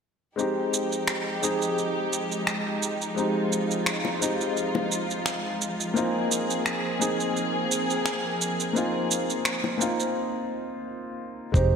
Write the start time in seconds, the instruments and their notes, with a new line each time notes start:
0.36 string section F3 G#3 D#4 G4, grand piano G#3 C4 D#4, shaker
0.40 grand piano G4
0.74 shaker
0.92 shaker
1.07 finger snap, shaker
1.42 grand piano G#3 C4 D#4 G#4, shaker
1.62 shaker
1.78 shaker
2.13 shaker
2.32 shaker
2.47 finger snap, shaker
2.83 shaker
3.02 shaker
3.15 grand piano G#3 C4 D#4, string section F4, shaker
3.19 grand piano G4
3.52 shaker
3.71 shaker
3.86 finger snap, shaker
4.05 high bongo
4.19 grand piano G#3 C4 D#4, shaker
4.24 grand piano G4
4.41 shaker
4.57 shaker
4.75 high bongo
4.92 shaker
5.10 shaker
5.26 finger snap, shaker
5.62 shaker
5.80 shaker
5.94 grand piano A#3 C4 D#4, string section A#3 C4 G#4, shaker
5.98 grand piano F4
6.31 shaker
6.50 shaker
6.66 finger snap, shaker
6.99 grand piano A#3 C4 D#4 G#4, shaker
7.20 shaker
7.37 shaker
7.71 shaker
7.90 shaker
8.06 finger snap, shaker
8.41 shaker
8.60 shaker
8.73 grand piano A#3 C4 D#4, shaker
8.78 grand piano F4
9.11 shaker
9.30 shaker
9.45 finger snap, shaker
9.64 high bongo
9.78 grand piano A#3 C4 D#4, shaker
9.82 grand piano F4
10.00 shaker
11.52 fingered electric bass F1, string section F3 C4 D#4, grand piano G#3 C4 D#4, vibraphone C5, kick, shaker
11.57 grand piano G4